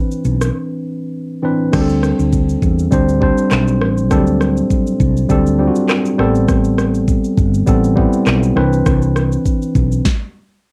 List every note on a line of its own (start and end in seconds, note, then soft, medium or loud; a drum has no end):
0.00 0.17 E3 medium
0.00 0.17 C4 medium
0.00 0.17 D4 medium
0.00 0.18 B4 loud
0.11 shaker soft
0.25 0.49 B1 medium
0.25 shaker medium
0.41 cross-stick medium
0.41 shaker medium
1.42 1.71 E3 medium
1.42 1.71 C4 medium
1.42 1.72 D4 medium
1.42 1.72 B4 medium
1.72 2.12 D2 loud
1.72 2.84 G3 medium
1.72 2.84 C4 medium
1.72 2.85 D4 medium
1.72 1.81 G4 medium
1.72 kick loud
1.72 cross-stick loud
1.72 crash medium
1.72 shaker medium
1.81 2.88 A4 loud
1.89 shaker soft
2.03 cross-stick medium
2.03 shaker soft
2.19 2.55 D2 medium
2.19 shaker medium
2.33 kick medium
2.33 shaker medium
2.49 shaker soft
2.62 2.87 E2 loud
2.62 kick medium
2.62 shaker medium
2.79 shaker medium
2.91 3.30 D2 loud
2.91 3.19 G3 medium
2.91 3.20 C4 medium
2.91 3.20 D4 medium
2.91 3.21 C5 medium
2.91 kick loud
2.91 shaker medium
3.09 shaker medium
3.21 4.05 G3 medium
3.21 4.05 C4 medium
3.21 4.05 D4 medium
3.21 4.06 C5 medium
3.21 kick medium
3.38 shaker medium
3.51 3.81 B1 medium
3.51 cross-stick medium
3.51 clap loud
3.51 shaker medium
3.68 shaker medium
3.81 4.11 A1 loud
3.81 cross-stick medium
3.98 shaker medium
4.10 4.60 D2 loud
4.10 4.17 F#3 medium
4.10 5.22 C4 medium
4.10 5.22 D4 medium
4.10 5.23 A4 loud
4.10 kick loud
4.10 cross-stick medium
4.10 shaker medium
4.16 5.25 G3 medium
4.27 shaker soft
4.41 cross-stick medium
4.41 shaker soft
4.57 shaker soft
4.70 kick medium
4.70 shaker medium
4.87 shaker medium
5.00 5.25 C2 medium
5.00 kick medium
5.00 shaker medium
5.17 shaker medium
5.29 5.68 D2 loud
5.29 5.57 G3 medium
5.29 5.57 C4 medium
5.29 5.58 D4 medium
5.29 5.58 A4 loud
5.29 kick loud
5.29 shaker medium
5.46 shaker medium
5.58 6.17 G3 medium
5.58 6.18 C4 medium
5.58 6.19 D4 medium
5.58 5.67 F4 medium
5.67 6.23 F#4 medium
5.76 shaker medium
5.89 cross-stick loud
5.89 clap medium
5.89 shaker medium
6.05 shaker medium
6.18 7.18 A1 medium
6.18 7.30 G3 medium
6.18 7.30 B3 medium
6.18 7.30 C4 medium
6.18 7.31 A4 loud
6.18 cross-stick medium
6.35 shaker soft
6.48 kick loud
6.48 cross-stick medium
6.48 shaker medium
6.64 shaker soft
6.78 cross-stick medium
6.78 shaker soft
6.95 shaker soft
7.08 kick loud
7.08 shaker medium
7.24 shaker soft
7.37 7.62 G1 medium
7.37 kick medium
7.37 shaker medium
7.54 shaker medium
7.66 8.06 A1 loud
7.66 7.95 G3 medium
7.66 7.95 B3 medium
7.66 7.95 C4 medium
7.66 7.96 A4 medium
7.66 kick loud
7.66 shaker medium
7.84 shaker medium
7.96 8.56 G3 medium
7.96 8.56 B3 medium
7.96 8.55 C4 medium
7.96 8.57 E4 medium
7.96 kick loud
8.13 shaker medium
8.26 8.51 B1 medium
8.26 cross-stick loud
8.26 clap loud
8.26 shaker medium
8.43 shaker medium
8.55 8.81 C2 loud
8.55 9.67 E3 medium
8.55 9.68 C4 medium
8.55 9.68 D4 medium
8.55 9.68 B4 loud
8.55 cross-stick medium
8.73 shaker medium
8.86 9.36 C2 loud
8.86 kick loud
8.86 cross-stick loud
8.86 shaker medium
9.02 shaker soft
9.16 cross-stick medium
9.16 shaker soft
9.32 shaker medium
9.46 kick medium
9.46 shaker medium
9.62 shaker soft
9.75 10.00 B1 medium
9.75 kick medium
9.75 shaker medium
9.92 shaker medium
10.05 kick loud
10.05 snare medium